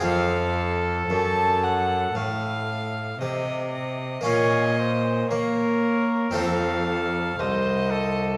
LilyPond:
<<
  \new Staff \with { instrumentName = "Violin" } { \time 4/4 \key f \phrygian \tempo 4 = 57 f''4 a''8 ges''8 f''4 ees''8 ees''8 | ees''4 des''4 f''4 ees''4 | }
  \new Staff \with { instrumentName = "Trumpet" } { \time 4/4 \key f \phrygian a'2. r4 | des''8 c''8 bes'4 a'8 a'8 c''8 a'8 | }
  \new Staff \with { instrumentName = "Harpsichord" } { \time 4/4 \key f \phrygian <c' f'>1 | <bes des' f'>2 <c' ees' f'>2 | }
  \new Staff \with { instrumentName = "Harpsichord" } { \clef bass \time 4/4 \key f \phrygian f,4 ges,4 a,4 c4 | bes,4 bes4 f,4 c,4 | }
  \new Staff \with { instrumentName = "Cello" } { \clef bass \time 4/4 \key f \phrygian f,4 ges,4 a,4 c4 | bes,4 bes4 f,4 c,4 | }
>>